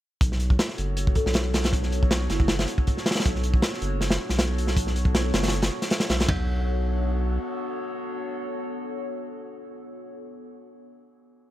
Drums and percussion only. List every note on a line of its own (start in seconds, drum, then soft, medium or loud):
0.21 kick loud
0.21 closed hi-hat medium
0.32 snare soft
0.40 closed hi-hat medium
0.50 kick medium
0.59 snare loud
0.59 closed hi-hat medium
0.69 snare soft
0.78 closed hi-hat medium
0.97 closed hi-hat medium
1.07 kick loud
1.15 kick loud
1.15 closed hi-hat medium
1.26 snare medium
1.34 snare loud
1.34 closed hi-hat medium
1.54 snare loud
1.54 closed hi-hat medium
1.64 snare loud
1.64 closed hi-hat medium
1.73 kick loud
1.73 closed hi-hat medium
1.83 snare soft
1.92 closed hi-hat medium
2.03 kick medium
2.11 snare loud
2.11 closed hi-hat medium
2.30 snare medium
2.30 closed hi-hat medium
2.40 kick loud
2.48 snare loud
2.48 closed hi-hat medium
2.59 snare loud
2.59 closed hi-hat medium
2.68 closed hi-hat medium
2.78 kick medium
2.87 kick medium
2.87 closed hi-hat medium
2.97 snare soft
3.06 snare medium
3.06 closed hi-hat medium
3.11 snare medium
3.11 closed hi-hat medium
3.15 snare medium
3.15 closed hi-hat medium
3.20 snare medium
3.20 closed hi-hat medium
3.25 kick loud
3.25 closed hi-hat medium
3.35 snare soft
3.43 closed hi-hat medium
3.54 kick loud
3.62 snare loud
3.62 closed hi-hat medium
3.73 snare soft
3.82 closed hi-hat medium
4.01 snare medium
4.01 closed hi-hat medium
4.11 snare loud
4.11 closed hi-hat medium
4.29 snare medium
4.29 closed hi-hat medium
4.39 snare loud
4.39 closed hi-hat medium
4.58 closed hi-hat medium
4.67 snare medium
4.77 kick loud
4.77 closed hi-hat medium
4.87 snare soft
4.96 closed hi-hat medium
5.05 kick loud
5.15 snare loud
5.15 closed hi-hat loud
5.34 snare loud
5.34 closed hi-hat medium
5.43 snare medium
5.43 closed hi-hat medium
5.48 snare medium
5.48 closed hi-hat medium
5.52 snare medium
5.52 closed hi-hat medium
5.62 snare loud
5.62 closed hi-hat medium
5.82 snare medium
5.82 closed hi-hat medium
5.90 snare loud
5.90 closed hi-hat medium
6.00 snare loud
6.00 closed hi-hat medium
6.10 snare loud
6.10 closed hi-hat medium
6.20 snare loud
6.20 closed hi-hat medium
6.28 kick loud
6.28 floor tom loud
6.28 ride bell medium